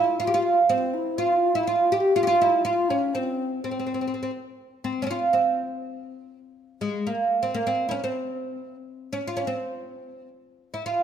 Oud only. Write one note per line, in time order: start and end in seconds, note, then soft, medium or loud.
0.00 0.19 E4 medium
0.20 0.27 F4 medium
0.27 0.34 G4 medium
0.34 0.56 F4 medium
0.69 1.20 C4 medium
1.18 1.55 F4 medium
1.55 1.67 E4 medium
1.67 1.92 F4 medium
1.92 2.15 G4 medium
2.16 2.23 F4 medium
2.23 2.27 G4 medium
2.27 2.41 F4 medium
2.41 2.64 E4 medium
2.65 2.90 F4 medium
2.90 3.14 C#4 medium
3.15 3.63 C4 medium
3.64 3.70 C4 medium
3.71 3.78 C4 soft
3.79 3.85 C4 medium
3.87 3.93 C4 soft
3.94 4.00 C4 soft
4.01 4.06 C4 soft
4.08 4.13 C4 soft
4.14 4.21 C4 soft
4.23 4.30 C4 medium
4.84 5.02 C4 medium
5.02 5.06 C4 medium
5.02 5.04 C#4 medium
5.07 5.10 C#4 medium
5.07 5.33 F4 medium
5.33 6.38 C4 medium
6.81 7.06 G#3 medium
7.07 7.44 A#3 medium
7.43 7.55 C4 medium
7.54 7.67 A#3 medium
7.67 7.88 C4 medium
7.89 8.03 C#4 medium
7.89 7.92 E4 medium
8.04 8.75 C4 medium
9.13 9.29 C#4 medium
9.28 9.40 F4 medium
9.37 9.47 C#4 medium
9.47 10.28 C4 medium
10.74 10.85 E4 medium
10.86 11.03 F4 medium